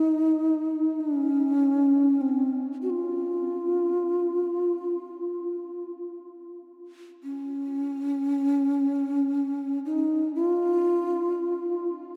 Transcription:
0, 0, Header, 1, 2, 480
1, 0, Start_track
1, 0, Tempo, 500000
1, 11676, End_track
2, 0, Start_track
2, 0, Title_t, "Native American-style wooden flute"
2, 0, Program_c, 0, 77
2, 0, Note_on_c, 0, 63, 68
2, 964, Note_on_c, 0, 61, 63
2, 978, Note_off_c, 0, 63, 0
2, 2121, Note_on_c, 0, 60, 56
2, 2135, Note_off_c, 0, 61, 0
2, 2524, Note_off_c, 0, 60, 0
2, 2715, Note_on_c, 0, 66, 47
2, 2784, Note_on_c, 0, 65, 66
2, 2798, Note_off_c, 0, 66, 0
2, 5613, Note_off_c, 0, 65, 0
2, 6946, Note_on_c, 0, 61, 59
2, 9404, Note_off_c, 0, 61, 0
2, 9460, Note_on_c, 0, 63, 61
2, 9900, Note_off_c, 0, 63, 0
2, 9937, Note_on_c, 0, 65, 82
2, 11443, Note_off_c, 0, 65, 0
2, 11676, End_track
0, 0, End_of_file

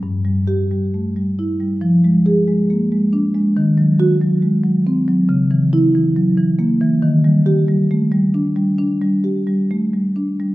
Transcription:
0, 0, Header, 1, 2, 480
1, 0, Start_track
1, 0, Tempo, 894188
1, 18, Time_signature, 4, 2, 24, 8
1, 978, Tempo, 868307
1, 4338, Tempo, 903614
1, 5744, End_track
2, 0, Start_track
2, 0, Title_t, "Marimba"
2, 0, Program_c, 0, 12
2, 15, Note_on_c, 0, 43, 59
2, 134, Note_on_c, 0, 55, 46
2, 255, Note_on_c, 0, 67, 60
2, 333, Note_off_c, 0, 55, 0
2, 382, Note_on_c, 0, 55, 44
2, 452, Note_off_c, 0, 67, 0
2, 506, Note_on_c, 0, 57, 42
2, 574, Note_off_c, 0, 55, 0
2, 623, Note_on_c, 0, 55, 45
2, 624, Note_off_c, 0, 57, 0
2, 745, Note_on_c, 0, 64, 48
2, 812, Note_off_c, 0, 55, 0
2, 860, Note_on_c, 0, 55, 44
2, 932, Note_off_c, 0, 64, 0
2, 954, Note_off_c, 0, 43, 0
2, 973, Note_on_c, 0, 53, 62
2, 978, Note_off_c, 0, 55, 0
2, 1100, Note_on_c, 0, 56, 54
2, 1220, Note_on_c, 0, 68, 60
2, 1293, Note_off_c, 0, 56, 0
2, 1341, Note_on_c, 0, 56, 50
2, 1413, Note_off_c, 0, 68, 0
2, 1464, Note_on_c, 0, 58, 46
2, 1533, Note_off_c, 0, 56, 0
2, 1582, Note_off_c, 0, 58, 0
2, 1584, Note_on_c, 0, 56, 53
2, 1700, Note_on_c, 0, 62, 57
2, 1774, Note_off_c, 0, 56, 0
2, 1821, Note_on_c, 0, 56, 55
2, 1892, Note_off_c, 0, 62, 0
2, 1916, Note_off_c, 0, 53, 0
2, 1941, Note_off_c, 0, 56, 0
2, 1942, Note_on_c, 0, 51, 68
2, 2058, Note_on_c, 0, 54, 54
2, 2180, Note_on_c, 0, 66, 81
2, 2251, Note_off_c, 0, 54, 0
2, 2301, Note_on_c, 0, 54, 52
2, 2372, Note_off_c, 0, 66, 0
2, 2417, Note_on_c, 0, 56, 48
2, 2492, Note_off_c, 0, 54, 0
2, 2535, Note_on_c, 0, 54, 52
2, 2538, Note_off_c, 0, 56, 0
2, 2661, Note_on_c, 0, 60, 61
2, 2728, Note_off_c, 0, 54, 0
2, 2778, Note_on_c, 0, 54, 62
2, 2851, Note_off_c, 0, 60, 0
2, 2877, Note_off_c, 0, 51, 0
2, 2894, Note_on_c, 0, 49, 78
2, 2898, Note_off_c, 0, 54, 0
2, 3016, Note_on_c, 0, 52, 66
2, 3138, Note_on_c, 0, 64, 80
2, 3207, Note_off_c, 0, 52, 0
2, 3260, Note_on_c, 0, 52, 57
2, 3328, Note_off_c, 0, 64, 0
2, 3377, Note_on_c, 0, 54, 58
2, 3448, Note_off_c, 0, 52, 0
2, 3495, Note_off_c, 0, 54, 0
2, 3495, Note_on_c, 0, 52, 60
2, 3612, Note_on_c, 0, 58, 67
2, 3687, Note_off_c, 0, 52, 0
2, 3737, Note_on_c, 0, 52, 61
2, 3806, Note_off_c, 0, 58, 0
2, 3832, Note_off_c, 0, 49, 0
2, 3854, Note_on_c, 0, 51, 76
2, 3856, Note_off_c, 0, 52, 0
2, 3976, Note_on_c, 0, 55, 59
2, 4095, Note_on_c, 0, 67, 82
2, 4169, Note_off_c, 0, 55, 0
2, 4217, Note_on_c, 0, 55, 58
2, 4290, Note_off_c, 0, 67, 0
2, 4343, Note_on_c, 0, 57, 54
2, 4408, Note_off_c, 0, 55, 0
2, 4454, Note_on_c, 0, 55, 62
2, 4458, Note_off_c, 0, 57, 0
2, 4573, Note_on_c, 0, 62, 63
2, 4642, Note_off_c, 0, 55, 0
2, 4688, Note_on_c, 0, 55, 55
2, 4761, Note_off_c, 0, 62, 0
2, 4786, Note_off_c, 0, 51, 0
2, 4807, Note_on_c, 0, 62, 64
2, 4879, Note_off_c, 0, 55, 0
2, 4930, Note_on_c, 0, 55, 63
2, 4999, Note_off_c, 0, 62, 0
2, 5049, Note_on_c, 0, 67, 57
2, 5121, Note_off_c, 0, 55, 0
2, 5172, Note_on_c, 0, 55, 57
2, 5241, Note_off_c, 0, 67, 0
2, 5299, Note_on_c, 0, 57, 52
2, 5364, Note_off_c, 0, 55, 0
2, 5415, Note_off_c, 0, 57, 0
2, 5418, Note_on_c, 0, 55, 49
2, 5539, Note_on_c, 0, 62, 55
2, 5611, Note_off_c, 0, 55, 0
2, 5666, Note_on_c, 0, 55, 54
2, 5734, Note_off_c, 0, 62, 0
2, 5744, Note_off_c, 0, 55, 0
2, 5744, End_track
0, 0, End_of_file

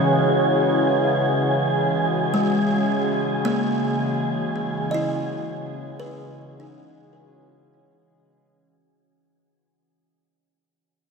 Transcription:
0, 0, Header, 1, 5, 480
1, 0, Start_track
1, 0, Tempo, 1100917
1, 858, Time_signature, 3, 2, 24, 8
1, 2786, Tempo, 1121495
1, 4802, End_track
2, 0, Start_track
2, 0, Title_t, "Synth texture"
2, 0, Program_c, 0, 99
2, 0, Note_on_c, 0, 68, 80
2, 0, Note_on_c, 0, 80, 77
2, 3755, Note_off_c, 0, 68, 0
2, 3756, Note_off_c, 0, 80, 0
2, 4802, End_track
3, 0, Start_track
3, 0, Title_t, "Kalimba"
3, 0, Program_c, 1, 108
3, 1019, Note_on_c, 1, 56, 74
3, 1504, Note_on_c, 1, 58, 82
3, 1598, Note_off_c, 1, 56, 0
3, 2141, Note_on_c, 1, 75, 66
3, 2156, Note_on_c, 1, 64, 68
3, 2540, Note_off_c, 1, 58, 0
3, 2614, Note_on_c, 1, 71, 81
3, 2717, Note_off_c, 1, 75, 0
3, 2875, Note_on_c, 1, 63, 58
3, 2975, Note_off_c, 1, 64, 0
3, 3658, Note_off_c, 1, 71, 0
3, 3917, Note_off_c, 1, 63, 0
3, 4802, End_track
4, 0, Start_track
4, 0, Title_t, "Ambient pad"
4, 0, Program_c, 2, 92
4, 0, Note_on_c, 2, 49, 72
4, 0, Note_on_c, 2, 52, 86
4, 0, Note_on_c, 2, 61, 79
4, 0, Note_on_c, 2, 66, 71
4, 0, Note_on_c, 2, 68, 71
4, 854, Note_off_c, 2, 49, 0
4, 859, Note_on_c, 2, 49, 76
4, 3744, Note_off_c, 2, 52, 0
4, 3746, Note_off_c, 2, 61, 0
4, 3747, Note_off_c, 2, 68, 0
4, 3750, Note_off_c, 2, 49, 0
4, 3751, Note_off_c, 2, 66, 0
4, 4802, End_track
5, 0, Start_track
5, 0, Title_t, "Harmonium"
5, 0, Program_c, 3, 20
5, 0, Note_on_c, 3, 49, 65
5, 0, Note_on_c, 3, 56, 73
5, 3798, Note_off_c, 3, 56, 0
5, 3799, Note_off_c, 3, 49, 0
5, 4802, End_track
0, 0, End_of_file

